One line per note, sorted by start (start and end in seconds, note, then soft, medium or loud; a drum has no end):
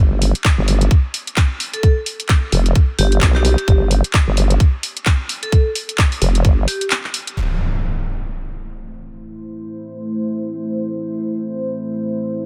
0.00 0.33 G1 medium
0.22 open hi-hat loud
0.35 closed hi-hat medium
0.44 kick loud
0.44 clap loud
0.44 closed hi-hat soft
0.58 0.89 G1 medium
0.68 open hi-hat loud
0.81 closed hi-hat medium
0.91 kick loud
0.91 closed hi-hat soft
1.14 open hi-hat loud
1.27 closed hi-hat medium
1.37 kick loud
1.37 clap loud
1.37 closed hi-hat soft
1.60 open hi-hat loud
1.74 1.80 A4 medium
1.74 closed hi-hat medium
1.83 1.92 A4 medium
1.83 kick loud
1.83 closed hi-hat medium
2.06 open hi-hat medium
2.20 closed hi-hat medium
2.29 kick loud
2.29 clap loud
2.29 closed hi-hat medium
2.52 2.74 F1 loud
2.52 open hi-hat loud
2.66 closed hi-hat medium
2.75 kick loud
2.75 closed hi-hat medium
2.99 3.20 G1 loud
2.99 3.13 G4 medium
2.99 open hi-hat loud
3.12 closed hi-hat medium
3.21 3.56 B1 loud
3.21 kick loud
3.21 clap loud
3.21 closed hi-hat medium
3.35 3.41 G4 medium
3.35 clap soft
3.45 3.53 G4 medium
3.45 open hi-hat loud
3.58 3.64 G4 medium
3.58 closed hi-hat medium
3.68 4.02 G1 loud
3.68 3.76 G4 medium
3.68 kick loud
3.68 closed hi-hat medium
3.91 open hi-hat loud
4.04 closed hi-hat medium
4.14 kick loud
4.14 clap loud
4.14 closed hi-hat medium
4.27 4.59 G1 medium
4.37 open hi-hat loud
4.50 closed hi-hat medium
4.60 kick loud
4.60 closed hi-hat medium
4.83 open hi-hat loud
4.97 closed hi-hat medium
5.06 kick loud
5.06 clap loud
5.06 closed hi-hat medium
5.29 open hi-hat loud
5.43 5.49 A4 medium
5.43 closed hi-hat medium
5.52 5.61 A4 medium
5.52 kick loud
5.52 closed hi-hat medium
5.75 open hi-hat loud
5.89 closed hi-hat medium
5.98 kick loud
5.98 clap loud
5.98 closed hi-hat medium
6.12 open hi-hat medium
6.22 6.43 F1 loud
6.22 open hi-hat loud
6.35 closed hi-hat medium
6.45 6.66 G1 loud
6.45 kick loud
6.45 closed hi-hat medium
6.68 6.83 G4 medium
6.68 open hi-hat loud
6.81 closed hi-hat medium
6.90 clap loud
6.90 closed hi-hat medium
7.04 clap soft
7.14 open hi-hat loud
7.27 closed hi-hat medium
7.37 12.46 A3 medium
7.37 12.46 E4 medium
7.37 12.46 C5 medium
7.37 impact medium